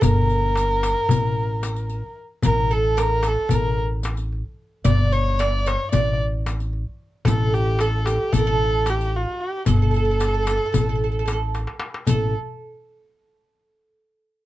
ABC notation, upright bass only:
X:1
M:9/8
L:1/8
Q:3/8=75
K:none
V:1 name="Upright bass" clef=bass
G,,,4 A,,,4 z | A,,,4 A,,,4 z | G,,,4 A,,,4 z | A,,,4 A,,,4 z |
G,,,4 A,,,4 z | A,,, z8 |]